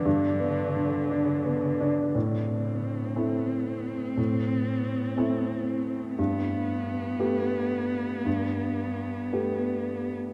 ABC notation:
X:1
M:6/8
L:1/8
Q:3/8=58
K:Am
V:1 name="Cello"
D,4- D, z | C6- | C6 | B,6- |
B,4- B, z |]
V:2 name="Upright piano"
[G,,D] B, D, D B, D | A,,3 [A,CE]3 | A,,3 [A,CE]3 | G,,3 [A,B,G]3 |
G,,3 [A,B,G]3 |]